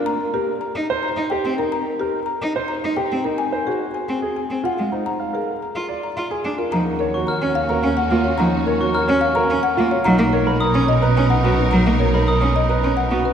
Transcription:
<<
  \new Staff \with { instrumentName = "Glockenspiel" } { \time 3/4 \key ees \dorian \tempo 4 = 108 r2. | r2. | r2. | r2. |
\key ees \minor r8. des'''16 f'''16 r4. r16 | r8. des'''16 f'''16 r4. r16 | r8. b''16 dis'''16 r4. r16 | r8. b''16 dis'''16 r4. r16 | }
  \new Staff \with { instrumentName = "Marimba" } { \time 3/4 \key ees \dorian bes''16 r16 g'16 r16 bes''16 r8 bes''16 r16 g''16 r16 bes'16 | bes''16 r16 g'16 r16 bes''16 r8 bes''16 r16 g''16 r16 bes'16 | aes''16 r16 aes'16 r16 aes''16 r8 aes''16 r16 ges''16 r16 c''16 | bes''16 r16 aes'16 r16 bes''16 r8 bes''16 r16 aes''16 r16 bes'16 |
\key ees \minor bes''16 r16 bes'16 r16 bes''16 r16 f''16 bes''16 r16 ges''16 r16 des''16 | bes''16 r16 bes'16 r16 bes''16 r16 f''16 bes''16 r16 ges''16 r16 des''16 | ais''16 r16 ais'16 r16 ais''16 r16 dis''16 ais''16 r16 fis''16 r16 b'16 | ais''16 r16 ais'16 r16 ais''16 r16 dis''16 ais''16 r16 fis''16 r16 b'16 | }
  \new Staff \with { instrumentName = "Grand piano" } { \time 3/4 \key ees \dorian r8 bes'16 r8. c''16 r8 g'16 r16 ees'16 | r8 bes'16 r8. c''16 r8 g'16 r16 ees'16 | r16 c''16 ges'16 r8. aes'16 r8 f'16 r16 ees'16 | r16 f''16 bes'16 r8. d''16 r8 aes'16 r16 f'16 |
\key ees \minor ees'16 r16 des''16 ges'16 r16 des''16 r16 bes'16 r8 f'16 r16 | ees'16 r16 des''16 ges'16 r16 des''16 r16 bes'16 r8 f'16 r16 | dis'16 r16 des''16 ais'16 r16 des''16 r16 b'16 r8 fis'16 r16 | dis'16 r16 des''16 ais'16 r16 des''16 r16 b'16 r8 fis'16 r16 | }
  \new Staff \with { instrumentName = "String section" } { \time 3/4 \key ees \dorian r2. | r2. | r2. | r2. |
\key ees \minor <des' ges'>2.~ | <des' ges'>2~ <des' ges'>8. r16 | <dis' ais'>2.~ | <dis' ais'>2~ <dis' ais'>8. r16 | }
  \new Staff \with { instrumentName = "Cello" } { \time 3/4 \key ees \dorian r4 r16 ees'16 r8 ees'16 r16 c'16 r16 | r4 r16 ees'16 r8 ees'16 r16 c'16 r16 | r4 r16 c'16 r8 c'16 r16 aes16 r16 | r4 r16 f'16 r8 f'16 r16 d'16 r16 |
\key ees \minor f16 r4 des'16 r8 des'16 r16 bes16 r16 | f16 r4 des'16 r8 des'16 r16 bes16 r16 | fis16 ais16 r8. des'16 r8 des'16 r16 b16 r16 | fis16 ais16 r8. des'16 r8 des'16 r16 b16 r16 | }
  \new Staff \with { instrumentName = "Double bass section" } { \clef bass \time 3/4 \key ees \dorian r2. | r2. | r2. | r2. |
\key ees \minor ees,2.~ | ees,2. | b,,2.~ | b,,2. | }
>>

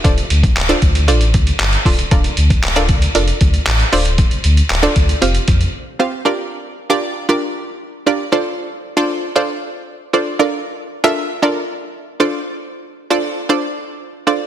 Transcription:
<<
  \new Staff \with { instrumentName = "Synth pluck" } { \time 4/4 \key d \phrygian \tempo 4 = 116 <d' f' a' c'' d''>4 r16 <d' f' a' c'' d''>8 r16 <d' f' a' c'' d''>4 r8 <d' f' a' c'' d''>16 r16 | <d' f' a' bes' d''>4 r16 <d' f' a' bes' d''>8 r16 <d' f' a' bes' d''>4 r8 <d' f' a' c'' d''>8~ | <d' f' a' c'' d''>4 r16 <d' f' a' c'' d''>8 r16 <c' f' g' c'' f''>4 r8 <c' f' g' c'' f''>16 r16 | <d' f' g' bes' d''>4 r16 <d' f' g' bes' d''>8 r16 <d' f' g' bes' d''>4 r8 <d' f' g' bes' d''>16 r16 |
<d' f' a' c'' d''>4 r16 <d' f' a' c'' d''>8 r16 <d' f' a' c'' d''>4 r8 <d' f' a' c'' d''>16 r16 | <d' f' a' bes' d''>4 r16 <d' f' a' bes' e''>8 r16 <d' f' a' bes' d''>4 r8 <d' f' a' c'' d''>8~ | <d' f' a' c'' d''>4 r16 <d' f' a' c'' d''>8 r16 <d' f' a' c'' d''>4 r8 <d' f' a' c'' d''>16 r16 | }
  \new Staff \with { instrumentName = "Sub bass" } { \clef bass \time 4/4 \key d \phrygian d,,8 d,8 d,,8 d,8 a,,8 d,8 g,,8 cis,,8 | d,,8 d,8 d,,8 d,8 f,,8 d,8 a,,8 d,,8~ | d,,8 d,8 d,,8 d,8 f,,8 f,8 r4 | r1 |
r1 | r1 | r1 | }
  \new DrumStaff \with { instrumentName = "Drums" } \drummode { \time 4/4 <hh bd>16 hh16 hh16 <hh bd>16 <hc hh>16 hh16 <hh bd>16 hh16 hh16 hh16 <hh bd>16 hh16 <hc hh>16 hh16 <hho bd>16 hh16 | <hh bd>16 hh16 hh16 <hh bd>16 <hc hh>16 hh16 <hh bd>16 hh16 hh16 hh16 <hh bd>16 hh16 <hc hh>16 hh16 hho16 hh16 | <hh bd>16 hh16 hh16 hh16 <hc hh>16 hh16 <hh bd>16 hh16 hh16 hh16 <hh bd>16 hh16 r4 | r4 r4 r4 r4 |
r4 r4 r4 r4 | r4 r4 r4 r4 | r4 r4 r4 r4 | }
>>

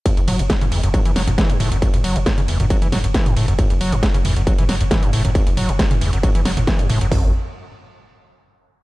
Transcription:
<<
  \new Staff \with { instrumentName = "Acid bass" } { \clef bass \time 4/4 \key fis \minor \tempo 4 = 136 fis,16 e,16 fis16 fis,16 e16 cis16 e,16 fis,16 fis16 e16 fis16 fis,16 e16 fis,16 a,16 fis,16 | fis,16 e,16 fis16 fis,16 e16 cis16 e,16 fis,16 fis16 e16 fis16 fis,16 e16 fis,16 a,16 fis,16 | fis,16 e,16 fis16 fis,16 e16 cis16 e,16 fis,16 fis16 e16 fis16 fis,16 e16 fis,16 a,16 fis,16 | fis,16 e,16 fis16 fis,16 e16 cis16 e,16 fis,16 fis16 e16 fis16 fis,16 e16 fis,16 a,16 fis,16 |
fis,8 r2. r8 | }
  \new Staff \with { instrumentName = "Sub bass" } { \clef bass \time 4/4 \key fis \minor r16 fis,,16 fis,,16 fis,,16 r16 fis,,16 fis,,16 fis,,16 r16 fis,,16 fis,,16 fis,,16 r16 fis,,16 fis,,16 fis,,16 | r16 fis,,16 fis,,16 fis,,16 r16 fis,,16 fis,,16 fis,,16 r16 fis,,16 fis,,16 fis,,16 r16 fis,,16 fis,,16 fis,,16 | r16 fis,,16 fis,,16 fis,,16 r16 fis,,16 fis,,16 fis,,16 r16 fis,,16 fis,,16 fis,,16 r16 fis,,16 fis,,16 fis,,16 | r16 fis,,16 fis,,16 fis,,16 r16 fis,,16 fis,,16 fis,,16 r16 fis,,16 fis,,16 fis,,16 r16 fis,,16 fis,,16 fis,,16 |
fis,,8 r2. r8 | }
  \new DrumStaff \with { instrumentName = "Drums" } \drummode { \time 4/4 <hh bd cymr>16 <hh cymr>16 <hho cymr toml>16 <hh cymr>16 <hh bd cymr sn>16 <hh cymr toml>16 <hho cymr>16 <hh cymr>16 <hh bd cymr toml>16 <hh cymr>16 <hho cymr sn>16 <hh cymr toml>16 <hh bd cymr sn>16 <hh cymr>16 <hho cymr toml>16 <hh cymr>16 | <hh bd cymr>16 <hh cymr toml>16 <hho cymr>16 <hh cymr>16 <hh bd cymr sn toml>16 <hh cymr>16 <hho cymr>16 <hh cymr toml>16 <hh bd cymr>16 <hh cymr>16 <hho cymr sn toml>16 <hh cymr>16 <hh bd cymr sn>16 <hh cymr toml>16 <hho cymr>16 <hh cymr>16 | <hh bd cymr toml>16 <hh cymr>16 <hho cymr>16 <hh cymr toml>16 <hh bd cymr sn>16 <hh cymr>16 <hho cymr toml>16 <hh cymr>16 <hh bd cymr>16 <hh cymr toml>16 <hho cymr sn>16 <hh cymr>16 <hh bd cymr sn toml>16 <hh cymr>16 <hho cymr>16 <hh cymr toml>16 | <hh bd cymr>16 <hh cymr>16 <hho cymr toml>16 <hh cymr>16 <hh bd cymr sn>16 <hh cymr toml>16 <hho cymr>16 <hh cymr>16 <hh bd cymr toml>16 <hh cymr>16 <hho cymr sn>16 <hh cymr toml>16 <hh bd cymr sn>16 <hh cymr>16 <hho cymr toml>16 <hh cymr>16 |
<hho bd tomfh>4 r4 r4 r4 | }
>>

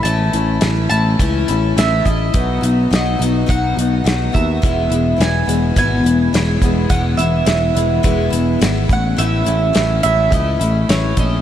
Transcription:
<<
  \new Staff \with { instrumentName = "Mandolin" } { \time 4/4 \key e \major \tempo 4 = 105 a''4. a''4 r8 e''8 dis''8~ | dis''4 dis''4 fis''4. e''8~ | e''4 gis''4 gis''2 | fis''8 e''2 r4 fis''8 |
e''4. e''8 dis''4 cis''8 dis''8 | }
  \new Staff \with { instrumentName = "Steel-string acoustic guitar" } { \time 4/4 \key e \major <a, e a cis' e'>8 <a cis' e'>8 <e a cis' e'>8 <a cis' e'>8 <a, e a cis' e'>8 <a cis' e'>8 <e a cis' e'>8 <a cis' e'>8 | <b, fis b dis' fis'>8 <b dis' fis'>8 <fis b dis' fis'>8 <b dis' fis'>8 <b, fis b dis' fis'>8 <b dis' fis'>8 <fis b dis' fis'>8 <b dis' fis'>8 | <e, b, e gis b e'>8 <e gis b e'>8 <e gis b e'>8 <e gis b e'>8 <e, b, e gis b e'>8 <e gis b e'>8 <e gis b e'>8 <e gis b e'>8 | <e, b, e gis b e'>8 <e gis b e'>8 <e gis b e'>8 <e gis b e'>8 <e, b, e gis b e'>8 <e gis b e'>8 <e gis b e'>8 <a cis' e'>8 |
<a, e a cis' e'>8 <a cis' e'>8 <e a cis' e'>8 <a cis' e'>8 <a, e a cis' e'>8 <a cis' e'>8 <e a cis' e'>8 <a cis' e'>8 | }
  \new Staff \with { instrumentName = "Picked electric bass" } { \clef bass \time 4/4 \key e \major a,,8 a,,8 a,,8 a,,8 cis,8 a,,8 a,,8 a,,8 | b,,8 b,,8 b,,8 b,,8 b,,8 b,,8 b,,8 dis,8 | e,,8 e,,8 e,,8 e,,8 gis,,8 e,,8 e,,8 e,,8 | e,,8 e,,8 e,,8 e,,8 e,,8 e,,8 gis,,8 a,,8 |
a,,8 a,,8 a,,8 a,,8 cis,8 a,,8 a,,8 ais,,8 | }
  \new DrumStaff \with { instrumentName = "Drums" } \drummode { \time 4/4 hh8 hh8 <hh sn>8 hh8 <hh bd>8 hh8 <hh sn>8 <hh bd>8 | <hh bd>8 hh8 <hh sn>8 hh8 <hh bd>8 hh8 <hh sn>8 <hh bd>8 | <hh bd>8 hh8 <hh sn>8 hh8 <hh bd>8 hh8 <hh sn>8 <hh bd>8 | <hh bd>8 hh8 <hh sn>8 hh8 <hh bd>8 hh8 <hh sn>8 <hh bd>8 |
hh8 hh8 <hh sn>8 hh8 <hh bd>8 hh8 <hh sn>8 <hh bd>8 | }
>>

